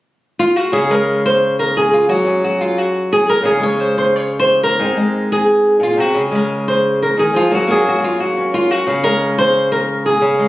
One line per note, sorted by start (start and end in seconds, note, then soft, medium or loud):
0.39 0.56 F4 medium
0.56 0.73 F#4 medium
0.72 2.08 C#3 medium
0.72 0.91 G#4 loud
0.90 2.08 G#3 soft
0.90 1.24 A#4 medium
1.26 1.58 C5 medium
1.59 1.75 A#4 medium
1.77 2.10 G#4 medium
1.94 2.09 F4 medium
2.09 3.44 F#3 medium
2.09 2.43 F#4 medium
2.24 3.41 C#4 medium
2.24 2.77 G#4 medium
2.44 2.60 F#4 medium
2.61 2.78 F4 medium
2.78 3.45 F#4 medium
3.13 3.28 G#4 medium
3.29 3.45 A#4 medium
3.43 4.79 C#3 medium
3.43 3.62 G#4 loud
3.60 4.79 G#3 medium
3.60 3.80 C#5 medium
3.80 3.96 C5 loud
3.98 4.16 C5 medium
4.16 4.39 C#5 medium
4.39 4.63 C5 medium
4.63 5.31 A#4 loud
4.79 5.79 G#2 medium
4.79 4.96 G#3 soft
4.79 6.14 C4 soft
4.79 5.82 D#4 soft
4.97 6.31 G#3 medium
5.32 6.16 G#4 medium
5.80 5.97 A#2 medium
5.80 6.00 F4 medium
5.97 6.15 C3 medium
5.97 6.16 F#4 medium
6.14 7.17 C#3 medium
6.14 6.35 G#4 medium
6.31 7.51 G#3 medium
6.31 6.68 A#4 medium
6.68 7.01 C5 medium
7.03 7.18 A#4 medium
7.17 7.33 D#3 medium
7.17 7.52 G#4 medium
7.34 7.50 F3 medium
7.34 7.52 F4 medium
7.51 8.85 F#3 medium
7.51 7.66 A#3 soft
7.51 8.37 C#4 soft
7.51 7.87 F#4 loud
7.67 8.84 A#3 medium
7.67 8.20 G#4 medium
7.88 7.97 F#4 medium
7.98 8.02 F#4 medium
8.04 8.20 F4 medium
8.20 8.54 F#4 medium
8.37 9.41 C#4 soft
8.54 8.71 F4 medium
8.71 8.87 F#4 medium
8.87 10.21 C#3 medium
8.87 9.03 G#4 loud
9.03 10.38 G#3 medium
9.03 9.37 A#4 medium
9.38 9.71 C5 medium
9.72 10.05 A#4 medium
10.06 10.48 G#4 medium
10.21 10.48 C#3 medium
10.39 10.48 G#3 medium